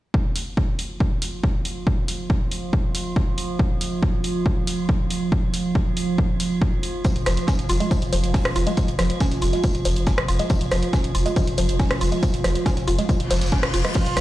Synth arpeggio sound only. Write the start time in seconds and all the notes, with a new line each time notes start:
7.05 F3
7.26 F3
7.48 C#4
7.69 F4
7.80 G#3
7.91 F3
8.13 F3
8.34 C#4
8.56 F4
8.67 G#3
8.77 F3
8.99 F3
9.21 C#4
9.42 F4
9.53 G#3
9.64 F3
9.85 F3
10.07 C#4
10.28 F4
10.39 G#3
10.50 F3
10.72 F3
10.93 C#4
11.15 F4
11.26 G#3
11.36 F3
11.58 F3
11.80 C#4
12.01 F4
12.12 G#3
12.23 F3
12.44 F3
12.66 C#4
12.88 F4
12.99 G#3
13.09 F3
13.31 F3
13.52 C#4
13.74 F4
13.85 G#3
13.95 F3
14.17 F3